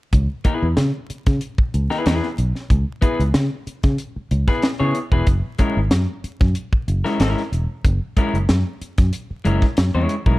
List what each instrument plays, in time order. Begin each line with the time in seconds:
0.13 fingered electric bass C#2, kick, closed hi-hat
0.45 clean electric guitar B3 E4 G#4 B4, kick, closed hi-hat
0.62 fingered electric bass E2
0.77 fingered electric bass C#3, snare, closed hi-hat
1.10 muted fingered electric bass stroke, closed hi-hat
1.26 fingered electric bass C#3, kick, snare, closed hi-hat
1.41 closed hi-hat
1.58 muted fingered electric bass stroke, kick
1.74 fingered electric bass C#2, closed hi-hat
1.90 clean electric guitar B3 E4 G#4 B4, snare
2.06 fingered electric bass E2, clean electric guitar B3 E4 G#4 B4, snare, closed hi-hat
2.23 snare
2.38 fingered electric bass B1, closed hi-hat
2.55 snare
2.70 fingered electric bass C#2, kick, closed hi-hat
3.02 clean electric guitar B3 E4 G#4 B4, kick, closed hi-hat
3.19 fingered electric bass C#2, closed hi-hat
3.34 fingered electric bass C#3, snare, closed hi-hat
3.67 muted fingered electric bass stroke, closed hi-hat
3.83 fingered electric bass C#3, kick, snare, closed hi-hat
3.98 closed hi-hat
4.16 muted fingered electric bass stroke
4.31 fingered electric bass C#2, closed hi-hat
4.47 clean electric guitar B3 E4 G#4 B4, kick, snare
4.62 snare, closed hi-hat
4.79 fingered electric bass C#3, clean electric guitar B3 E4 G#4 C#5
4.95 closed hi-hat
5.12 fingered electric bass E1, clean electric guitar B3 E4 G#4 B4, kick
5.27 fingered electric bass F#1, kick, closed hi-hat
5.59 clean electric guitar G#3 C#4 E4 A#4, kick, closed hi-hat
5.77 fingered electric bass G#1
5.91 fingered electric bass F#2, snare, closed hi-hat
6.24 muted fingered electric bass stroke, closed hi-hat
6.40 fingered electric bass F#2, kick, snare
6.55 closed hi-hat
6.73 muted fingered electric bass stroke, kick
6.88 fingered electric bass F#1, closed hi-hat
7.04 clean electric guitar G#3 C#4 E4 A#4, snare
7.20 fingered electric bass G#1, clean electric guitar G#3 C#4 E4 A#4, snare, closed hi-hat
7.37 snare
7.52 fingered electric bass E1, closed hi-hat
7.85 fingered electric bass F#1, kick, closed hi-hat
8.17 clean electric guitar G#3 C#4 E4 A#4, kick, closed hi-hat
8.33 fingered electric bass F#1, closed hi-hat
8.49 fingered electric bass F#2, snare, closed hi-hat
8.81 muted fingered electric bass stroke, closed hi-hat
8.98 fingered electric bass F#2, kick, snare, closed hi-hat
9.13 closed hi-hat
9.31 muted fingered electric bass stroke
9.45 fingered electric bass F#1, clean electric guitar G#3 C#4 E4 A#4, closed hi-hat
9.62 kick, snare
9.77 fingered electric bass F#2, snare, closed hi-hat
9.95 fingered electric bass E2, clean electric guitar G#3 C#4 E4 C#5
10.09 closed hi-hat
10.26 fingered electric bass B1, clean electric guitar G#3 C#4 E4 A#4, kick